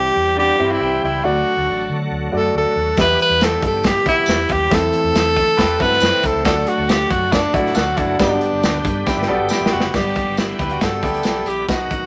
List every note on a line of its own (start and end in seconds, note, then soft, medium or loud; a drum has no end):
0.00 0.13 C3 medium
0.00 1.23 E3 medium
0.00 1.23 G3 medium
0.00 1.23 C4 medium
0.00 0.39 G4 loud
0.00 1.23 G4 medium
0.16 0.50 E2 medium
0.37 0.58 B3 medium
0.37 0.58 D4 medium
0.37 0.73 G4 loud
0.59 0.76 G2 medium
0.59 0.80 C4 medium
0.59 1.01 C4 medium
0.59 0.80 E4 medium
0.59 1.01 E4 medium
0.59 1.01 G4 medium
0.59 1.01 E5 medium
0.72 1.03 E4 medium
0.81 0.98 C2 medium
0.81 1.22 E4 medium
0.81 1.22 G4 medium
1.03 1.20 C#2 medium
1.03 1.26 E4 medium
1.24 1.41 D2 loud
1.24 1.86 D3 medium
1.24 2.97 D3 medium
1.24 2.97 F#3 medium
1.24 1.79 A3 medium
1.24 2.97 A3 medium
1.24 1.80 D4 medium
1.24 2.11 F#4 medium
1.24 1.80 F#4 medium
1.24 2.97 F#4 medium
1.24 1.80 D5 medium
1.57 1.65 D2 medium
1.68 1.85 A1 medium
1.89 2.06 D3 medium
2.11 2.28 D2 medium
2.32 2.50 F#2 medium
2.32 2.74 A3 medium
2.32 2.74 D4 medium
2.32 2.74 F#4 medium
2.32 2.74 D5 medium
2.36 2.55 A4 loud
2.55 2.63 D2 medium
2.55 2.96 A4 loud
2.76 2.93 D#2 medium
2.96 3.14 E2 loud
2.96 6.41 E3 medium
2.96 3.59 E3 medium
2.96 4.69 G3 medium
2.96 4.69 B3 medium
2.96 3.53 B3 medium
2.96 3.53 E4 medium
2.96 4.69 G4 medium
2.96 3.53 G4 medium
2.96 3.04 D#5 medium
2.96 kick loud
2.96 snare medium
2.96 closed hi-hat medium
2.96 tambourine medium
3.01 3.20 B4 loud
3.01 3.56 E5 medium
3.19 3.45 B4 loud
3.19 closed hi-hat medium
3.30 3.55 E2 medium
3.41 3.64 A4 loud
3.41 snare loud
3.41 closed hi-hat medium
3.41 tambourine loud
3.62 3.96 G2 medium
3.62 kick loud
3.62 closed hi-hat medium
3.67 3.88 A4 loud
3.83 4.07 G4 loud
3.83 kick medium
3.83 snare loud
3.83 closed hi-hat loud
3.83 tambourine medium
4.06 4.23 B2 medium
4.06 4.47 B3 medium
4.06 4.48 E4 medium
4.06 4.54 E4 loud
4.06 4.48 G4 medium
4.06 4.48 E5 medium
4.06 kick loud
4.06 closed hi-hat medium
4.26 4.44 E2 loud
4.26 snare medium
4.26 closed hi-hat medium
4.26 tambourine medium
4.49 4.66 D#2 medium
4.49 4.76 G4 loud
4.49 kick medium
4.49 closed hi-hat medium
4.70 4.88 E2 loud
4.70 5.33 E3 medium
4.70 8.16 A3 medium
4.70 5.26 C4 medium
4.70 6.43 C4 medium
4.70 5.26 E4 medium
4.70 6.43 A4 medium
4.70 5.26 A4 medium
4.70 5.26 E5 medium
4.70 kick loud
4.70 snare loud
4.70 closed hi-hat medium
4.70 tambourine medium
4.75 5.83 A4 loud
4.93 closed hi-hat medium
5.04 5.12 E2 medium
5.15 5.38 E2 medium
5.15 snare loud
5.15 closed hi-hat medium
5.15 tambourine medium
5.36 5.53 E3 medium
5.36 kick medium
5.36 closed hi-hat medium
5.57 5.75 E2 medium
5.57 5.79 G4 medium
5.57 5.79 B4 medium
5.57 kick medium
5.57 snare loud
5.57 closed hi-hat medium
5.57 tambourine medium
5.79 5.97 G2 medium
5.79 6.21 C4 medium
5.79 6.22 E4 medium
5.79 6.01 F#4 medium
5.79 6.01 A4 medium
5.79 6.22 A4 medium
5.79 6.27 B4 loud
5.79 6.22 E5 medium
5.79 kick medium
5.79 closed hi-hat medium
5.93 snare soft
6.00 6.10 F#2 loud
6.00 6.43 C4 medium
6.00 6.43 E4 medium
6.00 snare loud
6.00 closed hi-hat medium
6.00 tambourine loud
6.23 6.32 C2 medium
6.23 6.45 A4 loud
6.23 kick medium
6.23 closed hi-hat medium
6.34 6.43 C#2 medium
6.44 6.62 D2 loud
6.44 9.90 D3 medium
6.44 7.07 D3 medium
6.44 8.17 F#3 medium
6.44 7.01 A3 medium
6.44 7.01 D4 medium
6.44 8.17 F#4 medium
6.44 7.01 F#4 medium
6.44 6.70 A4 medium
6.44 7.01 D5 medium
6.44 kick loud
6.44 snare loud
6.44 closed hi-hat medium
6.44 tambourine medium
6.66 6.91 F#4 medium
6.66 closed hi-hat medium
6.78 7.03 D2 loud
6.89 7.12 G4 medium
6.89 snare loud
6.89 closed hi-hat medium
6.89 tambourine loud
7.10 7.44 F#2 medium
7.10 7.34 F#4 medium
7.10 kick medium
7.10 closed hi-hat medium
7.32 7.56 D4 loud
7.32 kick medium
7.32 snare loud
7.32 closed hi-hat medium
7.32 tambourine medium
7.54 7.71 A2 medium
7.54 7.96 A3 medium
7.54 7.75 D4 medium
7.54 7.96 D4 medium
7.54 7.78 E4 medium
7.54 7.75 F#4 medium
7.54 7.96 F#4 medium
7.54 7.96 D5 medium
7.54 kick loud
7.54 closed hi-hat medium
7.66 snare soft
7.75 7.92 D2 loud
7.75 7.97 F#4 medium
7.75 7.99 F#4 medium
7.75 7.96 A4 medium
7.75 snare medium
7.75 closed hi-hat medium
7.75 tambourine medium
7.97 8.15 F#1 medium
7.97 8.40 D4 medium
7.97 8.19 E4 medium
7.97 8.39 F#4 medium
7.97 kick medium
7.97 closed hi-hat medium
8.19 8.37 G1 loud
8.19 8.81 G2 medium
8.19 9.92 G3 medium
8.19 8.25 A#3 medium
8.19 9.92 B3 medium
8.19 8.75 D4 medium
8.19 9.46 D4 medium
8.19 8.75 G4 medium
8.19 9.92 G4 medium
8.19 8.75 D5 medium
8.19 kick loud
8.19 snare medium
8.19 closed hi-hat medium
8.19 tambourine medium
8.24 8.77 B3 medium
8.41 closed hi-hat medium
8.52 8.60 G1 medium
8.62 8.80 D2 medium
8.62 snare loud
8.62 closed hi-hat medium
8.62 tambourine loud
8.85 9.02 G2 medium
8.85 kick loud
8.85 closed hi-hat medium
9.06 9.28 E4 medium
9.06 9.27 G4 medium
9.06 kick medium
9.06 snare medium
9.06 tambourine medium
9.17 9.26 G1 medium
9.22 snare medium
9.28 9.37 B1 medium
9.28 9.70 B3 medium
9.28 9.70 D4 medium
9.28 9.49 F#4 medium
9.28 9.70 G4 medium
9.28 9.49 A4 medium
9.28 9.70 D5 medium
9.39 9.48 G1 medium
9.49 9.92 E4 medium
9.49 9.92 G4 medium
9.49 snare medium
9.49 tambourine loud
9.61 9.69 A1 medium
9.66 snare loud
9.72 9.81 F1 medium
9.72 9.96 F#4 medium
9.80 9.91 F#1 medium
9.80 snare medium
9.93 10.11 G1 loud
9.93 10.56 G2 medium
9.93 11.66 D3 medium
9.93 11.66 G3 medium
9.93 12.06 B3 medium
9.93 10.49 B3 medium
9.93 10.50 D4 medium
9.93 11.67 G4 medium
9.93 10.50 G4 medium
9.93 10.40 G4 medium
9.93 10.50 D5 medium
9.93 kick loud
9.93 snare medium
9.93 crash medium
9.93 tambourine medium
10.15 kick medium
10.15 closed hi-hat medium
10.26 10.52 G1 medium
10.37 10.73 E4 medium
10.37 snare loud
10.37 closed hi-hat medium
10.37 tambourine medium
10.59 10.76 D2 medium
10.59 10.80 G4 medium
10.59 10.80 B4 medium
10.59 kick medium
10.59 closed hi-hat medium
10.70 10.85 F#4 medium
10.70 closed hi-hat soft
10.81 11.03 G2 medium
10.81 11.02 F#4 medium
10.81 11.02 A4 medium
10.81 11.50 A4 loud
10.81 kick medium
10.81 snare loud
10.81 closed hi-hat medium
10.81 tambourine medium
11.03 11.20 D2 medium
11.03 11.45 B3 medium
11.03 11.45 D4 medium
11.03 11.65 E4 soft
11.03 11.65 G4 medium
11.03 11.45 G4 medium
11.03 11.45 D5 medium
11.03 kick medium
11.03 closed hi-hat medium
11.14 closed hi-hat soft
11.23 11.42 B1 medium
11.23 snare medium
11.23 closed hi-hat medium
11.23 tambourine loud
11.46 11.63 A#1 medium
11.46 11.69 G4 medium
11.46 closed hi-hat medium
11.68 11.86 B1 loud
11.68 12.06 B2 medium
11.68 12.06 D#3 medium
11.68 12.06 F#3 medium
11.68 12.06 B3 medium
11.68 12.06 D#4 medium
11.68 12.06 F#4 medium
11.68 12.06 D#5 medium
11.68 kick loud
11.68 snare medium
11.68 closed hi-hat medium
11.68 tambourine medium
11.90 12.06 A1 medium
11.90 kick medium
11.90 closed hi-hat medium